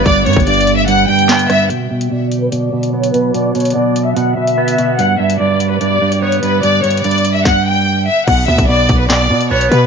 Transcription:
0.00 1.66 D3 medium
0.00 1.67 G3 medium
0.00 0.67 B3 medium
0.00 1.67 B3 medium
0.00 1.67 G4 medium
0.06 0.28 G1 loud
0.06 0.25 G2 loud
0.06 0.24 D5 loud
0.06 kick loud
0.06 closed hi-hat medium
0.26 0.46 G2 medium
0.26 0.36 G2 loud
0.26 0.45 C#5 medium
0.26 closed hi-hat medium
0.33 1.06 G1 loud
0.33 kick loud
0.33 closed hi-hat medium
0.40 closed hi-hat medium
0.47 0.87 G2 medium
0.47 0.76 D5 medium
0.47 closed hi-hat medium
0.54 closed hi-hat medium
0.61 closed hi-hat medium
0.67 closed hi-hat medium
0.78 0.87 E5 medium
0.88 1.07 G2 medium
0.88 1.07 F#5 medium
0.88 closed hi-hat medium
1.08 1.48 G2 medium
1.08 1.47 G5 medium
1.19 closed hi-hat medium
1.29 1.70 B3 medium
1.29 snare loud
1.29 clap loud
1.39 closed hi-hat medium
1.49 1.70 G2 medium
1.49 1.68 E5 medium
1.49 cross-stick loud
1.49 closed hi-hat medium
1.70 1.89 B2 medium
1.70 7.41 D3 medium
1.70 4.96 F#3 medium
1.70 7.41 B3 medium
1.70 4.96 F#4 medium
1.70 1.89 F#5 medium
1.70 closed hi-hat medium
1.90 2.10 B2 medium
1.90 2.09 E5 medium
2.01 closed hi-hat medium
2.11 2.51 B2 medium
2.11 2.40 D5 medium
2.32 closed hi-hat medium
2.42 2.51 B4 medium
2.52 2.72 B2 medium
2.52 2.91 D5 medium
2.52 closed hi-hat medium
2.73 3.13 B2 medium
2.83 closed hi-hat medium
2.93 3.96 B3 medium
2.93 3.12 C#5 medium
3.04 closed hi-hat medium
3.14 3.33 B2 medium
3.14 3.32 B4 medium
3.14 closed hi-hat medium
3.34 3.54 B2 medium
3.34 3.53 D5 medium
3.34 closed hi-hat medium
3.55 3.74 B2 medium
3.55 3.74 C#5 medium
3.55 closed hi-hat soft
3.60 closed hi-hat medium
3.65 closed hi-hat medium
3.70 closed hi-hat medium
3.76 4.15 B2 medium
3.76 4.05 D5 medium
3.96 closed hi-hat medium
4.06 4.16 E5 medium
4.16 4.36 B2 loud
4.16 4.35 F#5 medium
4.16 closed hi-hat medium
4.37 4.77 B2 medium
4.37 4.95 E5 medium
4.47 closed hi-hat medium
4.58 4.99 B3 medium
4.68 closed hi-hat medium
4.78 4.99 B2 medium
4.78 closed hi-hat medium
4.99 5.18 G2 medium
4.99 7.43 G3 medium
4.99 7.43 G4 medium
4.99 5.17 F#5 loud
4.99 closed hi-hat medium
5.19 5.39 G2 medium
5.19 5.38 E5 medium
5.30 closed hi-hat medium
5.40 5.80 G2 medium
5.40 5.69 D5 medium
5.60 closed hi-hat medium
5.71 5.80 B4 medium
5.81 6.00 G2 medium
5.81 6.20 D5 medium
5.81 closed hi-hat medium
6.02 6.41 G2 medium
6.12 closed hi-hat medium
6.22 7.25 B3 medium
6.22 6.41 C#5 medium
6.32 closed hi-hat medium
6.43 6.62 G2 medium
6.43 6.61 B4 medium
6.43 closed hi-hat medium
6.63 6.83 G2 loud
6.63 6.82 D5 loud
6.63 closed hi-hat medium
6.84 7.03 G2 medium
6.84 7.02 C#5 medium
6.84 closed hi-hat medium
6.91 closed hi-hat medium
6.97 closed hi-hat medium
7.04 8.07 G2 medium
7.04 7.33 D5 medium
7.04 closed hi-hat medium
7.11 closed hi-hat medium
7.18 closed hi-hat medium
7.25 closed hi-hat medium
7.35 7.45 E5 medium
7.45 7.64 F#5 medium
7.45 kick loud
7.45 snare medium
7.66 8.05 G5 medium
8.07 8.26 E5 medium
8.28 8.47 B1 loud
8.28 8.47 B2 medium
8.28 8.46 F#5 loud
8.28 kick loud
8.28 closed hi-hat medium
8.28 crash medium
8.48 8.58 D2 loud
8.48 8.68 B2 medium
8.48 8.67 E5 medium
8.58 8.88 B1 loud
8.58 kick loud
8.58 closed hi-hat medium
8.69 9.09 B2 medium
8.69 8.98 D5 medium
8.89 9.32 B1 loud
8.89 kick medium
8.89 closed hi-hat medium
8.99 9.09 B4 medium
9.10 9.29 B2 medium
9.10 9.48 D5 medium
9.10 snare loud
9.10 clap medium
9.10 closed hi-hat medium
9.30 9.70 B2 medium
9.30 9.52 B2 loud
9.41 closed hi-hat medium
9.51 9.70 B1 loud
9.51 9.87 B3 medium
9.51 9.69 C#5 medium
9.61 closed hi-hat medium
9.71 9.87 B2 medium
9.71 9.87 B2 loud
9.71 9.87 B4 medium
9.71 closed hi-hat medium

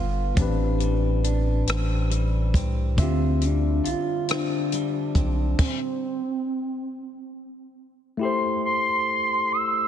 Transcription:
0.00 0.33 G1 medium
0.00 0.31 G3 medium
0.00 0.40 G3 medium
0.00 1.67 B3 medium
0.00 0.32 D4 medium
0.00 0.33 F4 medium
0.00 0.37 F4 medium
0.00 0.34 A4 medium
0.00 0.83 A4 medium
0.00 0.35 B4 medium
0.35 1.64 A1 loud
0.35 2.93 A2 medium
0.35 2.98 A2 medium
0.35 2.93 E3 medium
0.35 2.94 C4 medium
0.35 1.24 D4 medium
0.35 kick loud
0.35 closed hi-hat medium
0.39 2.95 D4 medium
0.39 2.96 G4 medium
0.39 2.96 B4 medium
0.80 2.10 G3 medium
0.80 closed hi-hat soft
1.24 2.99 D4 medium
1.24 closed hi-hat soft
1.67 2.56 A1 loud
1.67 2.55 C4 medium
1.67 cross-stick loud
1.67 closed hi-hat medium
2.10 3.41 G3 medium
2.10 closed hi-hat soft
2.54 3.00 C2 medium
2.54 4.29 C4 soft
2.54 kick medium
2.54 closed hi-hat soft
2.96 3.81 D2 medium
2.96 5.53 D3 medium
2.96 6.18 D3 medium
2.96 5.54 C4 medium
2.96 3.83 F4 medium
2.96 5.55 E5 medium
2.96 kick loud
2.96 closed hi-hat medium
3.01 3.45 C4 medium
3.01 5.56 F4 medium
3.01 5.57 G4 medium
3.42 4.72 G3 medium
3.42 3.89 D4 loud
3.42 closed hi-hat soft
3.84 3.95 B1 soft
3.84 5.67 F4 medium
3.84 4.32 F4 loud
3.84 closed hi-hat soft
4.29 5.15 C4 medium
4.29 5.62 D4 loud
4.29 cross-stick medium
4.29 closed hi-hat medium
4.72 6.18 G3 medium
4.72 closed hi-hat soft
5.15 5.55 B1 medium
5.15 6.18 C4 soft
5.15 kick medium
5.15 closed hi-hat soft
5.59 7.33 C4 medium
5.59 kick medium
5.59 crash medium
8.17 9.88 A3 medium
8.17 9.88 E4 medium
8.17 9.88 G4 medium
8.22 9.88 A4 medium
8.22 9.88 C5 medium
8.22 8.61 C6 medium
8.65 9.54 C6 loud
9.52 9.88 E6 loud

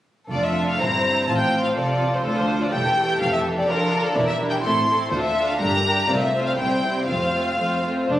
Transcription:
0.31 0.77 F1 soft
0.31 0.77 F2 soft
0.31 0.78 A3 soft
0.31 0.78 D4 soft
0.31 0.77 F4 soft
0.31 0.77 A4 soft
0.31 0.43 D5 medium
0.45 0.69 E5 soft
0.70 0.81 F5 soft
0.80 1.26 G1 soft
0.80 1.28 G2 soft
0.80 1.29 G3 soft
0.80 2.25 C4 soft
0.80 1.28 E4 soft
0.80 1.28 C5 soft
0.80 1.29 A#5 medium
1.28 1.74 A1 soft
1.28 1.76 A2 soft
1.28 2.74 F3 soft
1.28 1.76 F4 soft
1.28 1.77 C5 soft
1.28 1.40 A5 medium
1.38 1.63 G5 medium
1.64 1.69 F5 medium
1.76 2.25 C3 soft
1.76 2.24 F4 soft
1.76 2.24 A4 soft
1.76 2.12 D5 medium
2.14 2.26 C5 soft
2.25 2.72 D2 soft
2.25 2.70 D2 soft
2.25 2.73 D4 soft
2.25 2.73 F4 soft
2.25 2.37 A4 medium
2.25 2.73 A4 soft
2.36 2.61 C5 medium
2.62 2.74 D5 soft
2.73 3.18 E1 soft
2.73 3.21 E2 soft
2.73 3.69 E3 soft
2.73 3.67 A3 soft
2.73 2.98 G4 soft
2.73 3.68 A4 soft
2.73 3.21 G5 medium
2.99 3.69 G4 soft
3.20 3.66 F1 soft
3.20 3.68 F2 medium
3.20 3.33 F5 medium
3.33 3.41 E5 medium
3.58 3.69 D5 medium
3.68 4.17 D3 soft
3.68 4.16 F3 medium
3.68 4.16 D4 soft
3.68 4.17 F4 soft
3.68 4.17 A4 soft
3.68 4.05 A#4 medium
4.04 4.17 A4 medium
4.15 4.57 E1 medium
4.15 4.57 E2 medium
4.15 4.40 G3 soft
4.15 4.40 D4 soft
4.15 4.40 E4 soft
4.15 4.40 A#4 medium
4.15 4.28 D5 medium
4.27 4.35 E5 medium
4.41 4.65 G3 soft
4.41 4.64 D4 soft
4.41 4.64 E4 soft
4.41 4.65 A#4 soft
4.50 4.56 G5 medium
4.62 5.05 A1 medium
4.62 5.05 A2 medium
4.62 4.88 A3 soft
4.62 4.88 C4 soft
4.62 4.88 E4 soft
4.62 4.88 A4 soft
4.62 5.10 C6 medium
4.89 5.11 A3 medium
4.89 5.13 C4 soft
4.89 5.12 E4 soft
4.89 5.12 A4 soft
5.11 5.53 D2 medium
5.11 5.36 A3 soft
5.11 5.36 D4 soft
5.11 5.36 F4 soft
5.11 5.36 A4 soft
5.11 5.24 C5 medium
5.22 5.47 E5 medium
5.37 5.60 A3 soft
5.37 5.59 D4 soft
5.37 5.61 F4 soft
5.37 5.61 A4 soft
5.48 5.61 F5 medium
5.59 6.01 G1 medium
5.59 6.01 G2 medium
5.59 5.84 G3 soft
5.59 5.84 D4 soft
5.59 5.85 G4 soft
5.59 5.85 A#4 soft
5.59 6.08 A#5 medium
5.85 6.09 G3 soft
5.85 6.09 D4 soft
5.85 6.10 G4 soft
5.85 6.10 A#4 soft
6.08 6.51 C2 medium
6.08 6.51 C3 medium
6.08 6.33 A3 soft
6.08 6.33 C4 soft
6.08 6.33 F4 soft
6.08 6.34 C5 soft
6.08 6.21 D5 medium
6.21 6.46 E5 medium
6.34 6.59 A3 soft
6.34 6.57 C4 soft
6.34 6.59 F4 soft
6.34 6.58 C5 soft
6.46 6.51 F5 medium
6.57 7.01 C2 soft
6.57 7.01 C3 medium
6.57 6.84 G3 soft
6.57 6.83 C4 soft
6.57 6.83 E4 soft
6.57 6.83 C5 soft
6.57 7.07 G5 medium
6.84 7.09 G3 soft
6.84 7.09 C4 soft
6.84 7.09 E4 soft
6.84 7.07 C5 soft
7.08 7.51 F1 soft
7.08 7.52 F2 soft
7.08 7.34 A3 soft
7.08 7.34 C4 soft
7.08 7.33 F4 soft
7.08 7.33 C5 soft
7.08 7.83 F5 soft
7.34 7.58 A3 soft
7.34 7.58 C4 soft
7.34 7.58 F4 soft
7.34 7.58 C5 soft
7.59 8.02 F2 soft
7.59 7.84 A3 soft
7.59 7.84 C4 soft
7.59 7.84 F4 soft
7.59 7.84 C5 soft
7.85 8.08 A3 soft
7.85 8.10 C4 soft
7.85 8.10 F4 soft
7.85 8.10 C5 soft
8.08 8.20 F1 soft
8.08 8.20 F3 soft
8.08 8.20 A3 soft
8.08 8.20 D4 medium
8.08 8.20 C5 soft

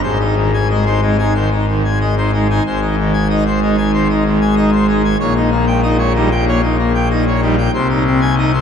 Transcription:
0.03 2.60 G#1 medium
0.03 2.60 G#2 medium
0.03 0.18 C5 medium
0.20 0.35 D#4 medium
0.36 0.51 D#3 medium
0.54 0.68 G#5 medium
0.70 0.84 G#3 soft
0.70 0.84 D#5 medium
0.86 1.00 D#4 medium
0.86 1.00 C5 medium
1.02 1.16 G#3 medium
1.02 1.17 D#4 medium
1.19 1.33 D#4 medium
1.19 1.33 G#5 medium
1.35 1.49 D#3 medium
1.35 1.49 C5 medium
1.51 1.66 D#4 medium
1.68 1.82 D#3 medium
1.85 1.99 G#5 medium
2.01 2.15 G#3 medium
2.01 2.15 D#5 medium
2.17 2.31 D#4 medium
2.17 2.31 C5 medium
2.33 2.47 G#3 medium
2.33 2.47 D#4 medium
2.50 2.63 D#4 medium
2.50 2.63 G#5 medium
2.65 5.16 G#1 medium
2.65 5.16 G#2 medium
2.65 2.80 C5 medium
2.81 2.95 D#4 medium
2.98 3.12 D#3 medium
3.13 3.27 G#5 loud
3.29 3.43 D#4 medium
3.29 3.44 D#5 medium
3.46 3.60 C5 medium
3.62 3.76 G#3 medium
3.62 3.76 D#4 medium
3.77 3.91 G#5 medium
3.94 4.07 D#3 medium
3.94 4.07 C5 medium
4.10 4.23 D#4 medium
4.25 4.39 D#3 medium
4.41 4.55 G#5 medium
4.56 4.70 D#4 medium
4.56 4.70 D#5 medium
4.73 4.86 C5 medium
4.88 5.02 G#3 medium
4.88 5.02 D#4 medium
5.04 5.17 G#5 medium
5.19 7.69 A#1 medium
5.19 7.69 A#2 medium
5.19 5.34 C#5 medium
5.36 5.50 D#4 medium
5.51 5.65 A#3 medium
5.67 5.81 G5 medium
5.83 5.97 D#4 medium
5.83 5.97 D#5 medium
5.98 6.13 C#5 medium
6.15 6.29 G3 medium
6.15 6.29 D#4 medium
6.31 6.45 G5 medium
6.48 6.61 A#3 medium
6.48 6.61 C#5 medium
6.63 6.77 D#4 medium
6.79 6.92 A#3 medium
6.95 7.08 G5 medium
7.11 7.24 D#4 medium
7.11 7.24 D#5 medium
7.27 7.41 C#5 medium
7.42 7.56 G3 medium
7.42 7.55 D#4 medium
7.58 7.71 G5 medium
7.74 8.61 C2 medium
7.74 8.61 C3 medium
7.74 7.87 C5 medium
7.90 8.03 D#4 medium
8.07 8.20 C4 medium
8.21 8.35 G#5 loud
8.38 8.51 D#4 medium
8.38 8.51 D#5 medium
8.54 8.61 C5 medium

